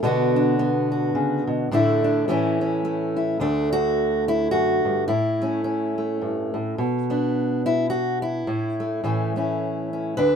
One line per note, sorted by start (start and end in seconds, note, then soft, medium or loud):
0.03 1.14 B2 medium
0.03 1.71 D3 medium
0.03 0.58 B3 medium
0.03 0.35 D4 medium
0.03 0.90 F#4 medium
0.36 1.69 D4 medium
0.59 1.68 B3 medium
0.92 1.69 F#4 soft
1.15 1.47 C#3 medium
1.47 1.71 B2 medium
1.71 2.27 A2 medium
1.71 2.28 D3 medium
1.71 2.25 A3 medium
1.71 2.03 D4 medium
1.71 2.26 E4 medium
2.04 2.25 D4 medium
2.28 3.40 A2 medium
2.28 3.38 E3 medium
2.28 2.84 A3 medium
2.28 2.60 C#4 medium
2.28 3.15 E4 medium
2.61 3.38 C#4 medium
2.85 3.37 A3 soft
3.16 3.37 E4 soft
3.40 4.52 D2 medium
3.40 5.09 D3 soft
3.40 5.07 A3 soft
3.40 3.72 D4 medium
3.73 4.28 F#4 medium
4.28 4.51 E4 medium
4.51 4.84 F#2 soft
4.51 5.07 F#4 medium
4.85 5.09 G2 medium
5.08 6.53 A2 medium
5.08 6.21 E4 medium
5.42 5.97 A3 soft
5.42 5.63 C#4 soft
5.64 6.78 C#4 medium
5.98 6.75 A3 soft
6.22 6.54 G2 medium
6.54 6.78 A2 medium
6.78 8.44 B2 medium
7.10 8.44 B3 soft
7.10 7.65 D4 soft
7.66 7.89 E4 medium
7.90 8.22 F#4 medium
8.22 9.35 E4 medium
8.47 9.02 A2 medium
8.80 9.04 A3 soft
9.04 10.16 A2 medium
9.04 10.14 E3 soft
9.04 9.36 A3 soft
9.04 9.36 C#4 soft
9.36 10.18 A3 soft
9.36 9.92 C#4 soft
9.36 10.14 E4 soft
9.93 10.14 C#4 soft
10.17 10.36 D2 medium
10.17 10.36 D3 soft
10.17 10.36 D4 soft
10.17 10.36 B4 medium